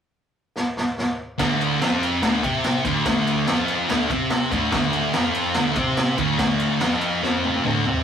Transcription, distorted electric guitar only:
1.38 1.79 D2 medium
1.38 1.80 D3 loud
1.81 2.21 F2 medium
1.81 2.22 F3 loud
2.23 2.42 D2 medium
2.23 2.43 D3 loud
2.43 2.84 C3 medium
2.43 2.84 C4 medium
2.86 3.05 D2 medium
2.86 3.06 D3 loud
3.06 3.47 D2 loud
3.06 3.48 D3 loud
3.48 3.88 F2 medium
3.48 3.89 F3 loud
3.89 4.09 D2 medium
3.89 4.10 D3 loud
4.11 4.51 C3 medium
4.11 4.52 C4 loud
4.51 4.71 D2 medium
4.51 4.72 D3 loud
4.72 5.13 D2 loud
4.72 5.14 D3 loud
5.14 5.55 F2 medium
5.14 5.56 F3 loud
5.56 5.76 D2 medium
5.56 5.77 D3 loud
5.77 6.18 C3 medium
5.77 6.19 C4 loud
6.18 6.38 D2 medium
6.18 6.39 D3 loud
6.39 6.81 D2 medium
6.39 6.81 D3 loud
6.81 7.22 F2 loud
6.81 7.23 F3 loud
7.23 7.64 F2 medium
7.23 7.65 F3 loud
7.65 7.85 D2 medium
7.65 7.86 D3 loud
7.86 8.03 C3 medium
7.86 8.03 C4 loud

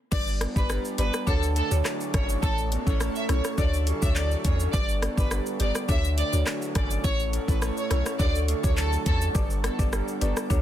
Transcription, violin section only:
0.12 0.24 D5 loud
0.56 0.67 B4 medium
0.99 1.11 B4 medium
1.27 1.39 A4 medium
1.56 1.68 A4 medium
2.14 2.26 C#5 medium
2.43 2.55 A4 loud
2.87 2.98 C#5 medium
3.16 3.27 E5 medium
3.29 3.41 C#5 medium
3.58 3.70 D5 medium
4.03 4.13 E5 medium
4.16 4.28 D5 medium
4.45 4.57 C#5 medium
4.74 4.86 D5 loud
5.18 5.29 B4 medium
5.60 5.72 D5 medium
5.89 6.01 E5 medium
6.18 6.30 D5 medium
6.76 6.88 D5 medium
7.04 7.16 C#5 loud
7.49 7.59 B4 medium
7.77 7.88 C#5 medium
7.91 8.03 C#5 medium
8.20 8.32 D5 medium
8.64 8.75 C#5 medium
8.78 8.90 A4 medium
9.06 9.18 A4 medium

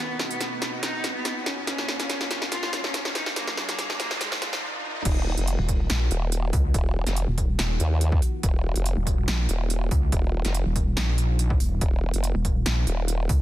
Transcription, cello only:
0.00 0.24 B3 loud
0.30 0.56 B3 medium
0.62 0.79 B3 medium
0.83 1.09 D#4 loud
1.15 1.41 B3 loud
1.46 1.64 C#4 medium
1.67 1.93 C#4 loud
2.00 2.25 C#4 medium
2.31 2.48 C#4 medium
2.52 2.78 F4 loud
2.84 3.10 C#4 loud
3.15 3.33 D#4 medium
3.36 3.62 A#3 loud
3.68 3.94 A#3 loud
4.00 4.17 A#3 medium
4.21 4.47 G#3 loud
4.53 4.63 F3 medium

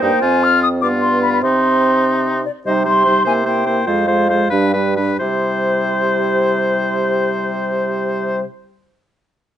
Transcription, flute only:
0.04 0.24 G5 medium
0.23 0.45 G#5 medium
0.43 0.62 F6 medium
0.63 0.69 D#6 medium
0.82 0.88 D6 medium
1.01 1.21 C6 medium
1.22 1.32 B5 medium
1.33 1.42 B5 medium
1.43 2.44 C6 medium
2.45 2.51 D5 soft
2.66 2.72 D#5 medium
2.87 3.26 C6 medium
3.27 3.33 G#5 medium
3.46 3.89 G5 soft
3.88 4.74 F5 medium
5.22 8.45 C5 soft

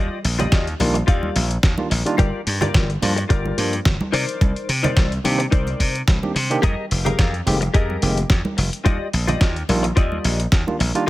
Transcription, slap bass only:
0.24 0.45 A#1 medium
0.52 0.73 D#2 loud
0.80 1.01 A#1 loud
1.08 1.29 D#2 medium
1.36 1.56 A#1 medium
1.63 1.74 D#2 loud
1.91 2.02 A#1 medium
2.19 2.30 G1 loud
2.47 2.68 G2 medium
2.74 2.95 G1 loud
3.02 3.23 G2 loud
3.30 3.51 G1 medium
3.58 3.79 G2 medium
3.86 3.97 G1 loud
4.13 4.24 C3 medium
4.41 4.52 C2 loud
4.69 4.90 C3 medium
4.97 5.18 C2 loud
5.25 5.45 C3 loud
5.52 5.73 C2 medium
5.80 6.01 C3 medium
6.08 6.19 C2 loud
6.36 6.56 C3 loud
6.63 6.74 F2 loud
6.91 7.12 F1 medium
7.19 7.40 F2 loud
7.47 7.67 F1 loud
7.74 7.95 F2 medium
8.02 8.23 F1 loud
8.30 8.41 F2 loud
8.58 8.69 F1 medium
8.86 8.97 D#2 loud
9.13 9.34 A#1 medium
9.41 9.62 D#2 loud
9.69 9.90 A#1 loud
9.97 10.18 D#2 medium
10.25 10.45 A#1 medium
10.52 10.63 D#2 loud
10.80 10.91 A#1 medium

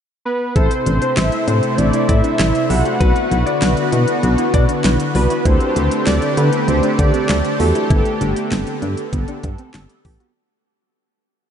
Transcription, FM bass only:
0.56 0.69 A1 loud
0.86 0.99 A1 loud
1.17 1.30 A1 loud
1.48 1.60 A2 medium
1.78 1.91 A1 loud
2.09 2.22 A2 loud
2.39 2.52 A1 medium
2.70 2.83 B1 medium
3.01 3.13 B1 loud
3.31 3.44 B1 loud
3.62 3.75 B1 loud
3.93 4.05 B2 loud
4.23 4.36 B1 loud
4.54 4.67 B2 loud
4.84 4.97 B1 medium
5.15 5.28 C2 medium
5.46 5.58 D2 loud
5.76 5.89 D2 loud
6.07 6.20 D2 loud
6.37 6.50 D3 loud
6.68 6.81 D2 loud
6.99 7.12 D3 loud
7.29 7.42 D2 loud
7.60 7.73 E2 medium
7.90 8.03 G1 loud
8.21 8.34 G1 loud
8.52 8.64 G1 loud
8.82 8.95 G2 loud
9.13 9.26 G1 loud
9.44 9.56 G2 loud
9.74 9.87 G1 medium
10.05 10.18 A1 medium

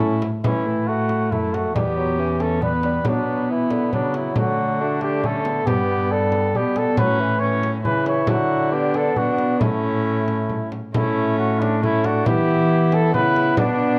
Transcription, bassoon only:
0.00 0.21 C#4 medium
0.44 0.85 E3 soft
0.89 1.31 A3 medium
1.32 1.77 A3 medium
1.75 1.99 G3 medium
1.97 2.21 F#3 soft
2.19 2.62 E3 medium
2.63 2.73 G3 medium
2.85 3.08 G3 medium
3.07 3.52 F#3 soft
3.51 3.73 E3 medium
3.71 3.95 D3 medium
3.93 4.82 F#3 soft
4.81 5.23 A3 medium
5.23 5.68 A3 medium
5.66 6.11 B3 medium
6.12 6.54 G3 medium
6.55 7.00 G3 medium
6.98 7.21 F#3 medium
7.20 7.62 E3 medium
7.85 8.30 E3 medium
8.29 8.74 F#3 medium
8.72 9.62 B3 medium
9.61 10.72 A3 medium
10.95 11.78 A3 medium
11.83 12.28 A3 medium
12.27 13.14 B3 medium
13.15 13.57 B3 medium
13.58 13.99 B3 medium

